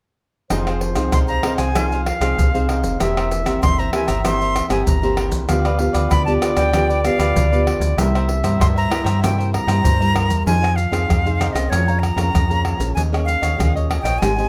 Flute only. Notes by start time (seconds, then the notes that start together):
1.13 C6
1.28 A#5
1.57 G#5
2.06 F5
3.62 C6
3.79 A#5
3.94 G#5
4.08 A#5
4.25 C6
4.71 G#5
4.87 A#5
6.11 B5
6.25 A5
6.56 G5
7.05 F5
8.61 C6
8.77 A#5
9.24 G5
9.53 A#5
10.46 G#5
10.76 F5
11.53 D#5
11.70 C#5
11.99 A#5
12.95 G#5
13.25 F5
14.01 G5
14.19 G#5